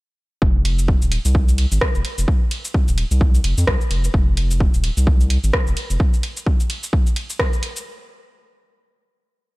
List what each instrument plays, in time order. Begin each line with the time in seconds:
0.42 analog synth bass F1, kick
0.65 closed hi-hat, ride
0.79 cabasa
0.88 kick
1.02 analog synth bass D#1, cabasa
1.12 closed hi-hat, ride
1.25 analog synth bass C2, cabasa
1.35 kick
1.48 cabasa
1.58 closed hi-hat, ride
1.72 analog synth bass G#1, cabasa
1.81 kick, cross-stick
1.95 analog synth bass F1, cabasa
2.05 closed hi-hat, ride
2.18 analog synth bass F1, cabasa
2.28 kick
2.51 closed hi-hat, ride
2.65 cabasa
2.74 kick
2.88 analog synth bass D#1, cabasa
2.98 closed hi-hat, ride
3.11 analog synth bass C2, cabasa
3.21 kick
3.35 cabasa
3.44 analog synth bass F1, closed hi-hat, ride
3.58 analog synth bass F2, cabasa
3.67 analog synth bass C2, kick, cross-stick, ride
3.81 cabasa
3.91 analog synth bass F1, closed hi-hat, ride
4.04 cabasa
4.14 analog synth bass F1, kick
4.37 closed hi-hat, ride
4.51 cabasa
4.60 kick
4.74 analog synth bass D#1, cabasa
4.84 closed hi-hat, ride
4.97 analog synth bass C2, cabasa
5.07 kick
5.21 cabasa
5.30 closed hi-hat, ride
5.44 analog synth bass G#1, cabasa
5.53 kick, cross-stick
5.67 analog synth bass F1, cabasa
5.77 closed hi-hat, ride
5.90 analog synth bass F1, cabasa
6.00 kick
6.14 cabasa
6.23 closed hi-hat, ride
6.37 cabasa
6.46 kick
6.60 cabasa
6.70 closed hi-hat, ride
6.83 cabasa
6.93 kick
7.07 cabasa
7.16 closed hi-hat, ride
7.30 cabasa
7.39 kick, cross-stick, ride
7.53 cabasa
7.63 closed hi-hat, ride
7.76 cabasa